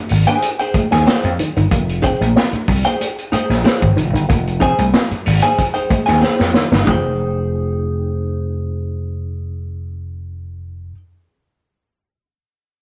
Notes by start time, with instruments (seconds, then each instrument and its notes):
0.09 slap bass G#1, muted clean electric guitar stroke, open hi-hat
0.27 clean electric guitar A#3 D#4 G#4 C5 G#5, closed hi-hat
0.42 muted clean electric guitar stroke, closed hi-hat
0.59 clean electric guitar D#4 G#4 C5 G5, closed hi-hat
0.74 clean electric guitar G#3, muted slap bass stroke, kick, closed hi-hat, muted conga, high conga
0.91 slap bass D#2, clean electric guitar F3 D#4 G#4 C5 G#5, snare, closed hi-hat
1.07 clean electric guitar D#4 G#4 C5 G5, muted clean electric guitar stroke, snare, high conga
1.24 slap bass F2, closed hi-hat
1.39 clean electric guitar D#3, closed hi-hat, muted conga, low conga
1.56 slap bass G1, clean electric guitar D#3, closed hi-hat
1.71 slap bass F1, clean electric guitar A#3, kick, closed hi-hat, muted conga
1.89 closed hi-hat
2.02 clean electric guitar C4 D#4 G#4 C5 G5, kick, closed hi-hat
2.20 slap bass A#1, muted clean electric guitar stroke, closed hi-hat, high conga
2.36 clean electric guitar C4, snare, muted conga
2.53 muted slap bass stroke, closed hi-hat, high conga, low conga
2.68 slap bass C2, muted clean electric guitar stroke, kick, open hi-hat, muted conga
2.85 clean electric guitar A#3 D#4 G#4 C5 G5, closed hi-hat
3.00 muted clean electric guitar stroke, closed hi-hat, muted conga
3.18 closed hi-hat
3.32 clean electric guitar G#3 D#4 G#4 C5 G5, muted slap bass stroke, closed hi-hat, muted conga, high conga
3.50 slap bass A#1, clean electric guitar F3, snare, closed hi-hat
3.64 clean electric guitar D#4 G#4 C5 G5, muted clean electric guitar stroke, snare, muted conga, high conga
3.82 slap bass G#1, kick, closed hi-hat
3.96 slap bass F1, clean electric guitar D#3, closed hi-hat, low conga
4.13 slap bass G1, clean electric guitar D#3, closed hi-hat
4.29 slap bass F1, clean electric guitar A#3, kick, closed hi-hat
4.47 closed hi-hat
4.60 clean electric guitar C4 D#4 G#4 C5 G#5, kick, closed hi-hat, muted conga
4.78 slap bass C2, muted clean electric guitar stroke, closed hi-hat, high conga
4.94 clean electric guitar C4, snare
5.11 muted slap bass stroke, closed hi-hat, high conga, low conga
5.25 slap bass G#1, muted clean electric guitar stroke, open hi-hat, muted conga
5.43 clean electric guitar A#3 D#4 G#4 C5 G#5, closed hi-hat, low conga
5.58 muted clean electric guitar stroke, kick, closed hi-hat
5.74 clean electric guitar D#4 G#4 C5 G5, closed hi-hat
5.90 clean electric guitar G#3, muted slap bass stroke, kick, closed hi-hat, muted conga, high conga
6.06 slap bass D#2, clean electric guitar F3 D#4 G#4 C5 G#5, snare, closed hi-hat
6.21 clean electric guitar D#4 G#4 C5 G5, muted clean electric guitar stroke, snare, muted conga, high conga
6.39 slap bass F2, snare
6.54 clean electric guitar D#3, snare, low conga
6.71 slap bass G1, clean electric guitar D#3, snare
6.85 slap bass F1, clean electric guitar F3 D#4 G#4 C5, kick, floor tom, high conga
6.90 clean electric guitar G5